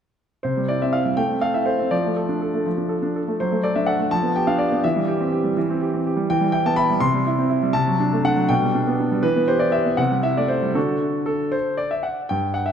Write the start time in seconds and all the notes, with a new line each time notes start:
0.43 C3 C5
0.57 G3
0.68 E4 D5
0.82 C4 E5
0.93 E4 F5
1.05 G3
1.17 A3 G5
1.29 C4
1.41 A4 F5
1.54 E4 E5
1.66 A4 C5
1.79 C4
1.91 F3 D5
2.06 A3
2.16 A4
2.29 D4
2.42 A4
2.54 A3
2.66 F3
2.78 D4
2.89 A4
3.02 D4
3.16 A4
3.28 A3
3.40 F#3 C5
3.52 A3
3.63 A4 D5
3.75 D4 E5
3.86 A4 F#5
3.99 A3
4.11 F3 A5
4.23 B3
4.36 G4 G5
4.47 D4 F5
4.58 G4 D5
4.72 B3
4.84 E3 E5
4.96 G3
5.08 G4
5.21 C4
5.32 G4
5.44 G3
5.57 E3
5.70 C4
5.81 G4
5.94 C4
6.07 G4
6.17 G3
6.30 E3 G5
6.41 G3
6.52 E4 G5
6.65 B3 A5
6.76 E4 B5
6.90 G3
7.00 C3 C6
7.13 G3
7.26 E4
7.39 C4
7.50 E4
7.63 G3
7.73 C3 A5
7.87 F#3
8.00 D4
8.13 A3
8.24 D4 F#5
8.37 F#3
8.49 B2 G5
8.62 G3
8.75 D4
8.87 B3
9.00 D4
9.12 G3
9.23 E3 B4
9.36 B3
9.48 G4 C5
9.59 E4 D5
9.72 G4 E5
9.86 B3
9.97 C3 F#5
10.12 G3
10.23 E4 E5
10.37 A3 D5
10.48 E4 C5
10.63 G3
10.75 D3 D4 F#4 A4
11.26 A4
11.52 C5
11.77 D5
11.91 E5
12.03 F#5
12.29 G2 G5
12.54 F#5
12.66 E5